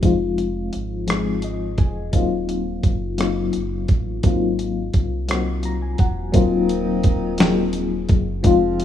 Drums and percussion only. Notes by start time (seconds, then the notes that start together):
0.03 kick, closed hi-hat
0.38 closed hi-hat
0.73 closed hi-hat
1.08 cross-stick, closed hi-hat
1.42 closed hi-hat
1.78 kick, closed hi-hat
2.13 kick, closed hi-hat
2.49 closed hi-hat
2.83 kick, closed hi-hat
3.18 cross-stick, closed hi-hat
3.53 closed hi-hat
3.88 kick, closed hi-hat
4.23 kick, closed hi-hat
4.59 closed hi-hat
4.94 kick, closed hi-hat
5.29 cross-stick, closed hi-hat
5.63 closed hi-hat
5.98 kick, closed hi-hat
6.34 kick, closed hi-hat
6.69 closed hi-hat
7.03 kick, closed hi-hat
7.38 snare, closed hi-hat
7.73 closed hi-hat
8.09 kick, closed hi-hat
8.44 kick, closed hi-hat
8.80 closed hi-hat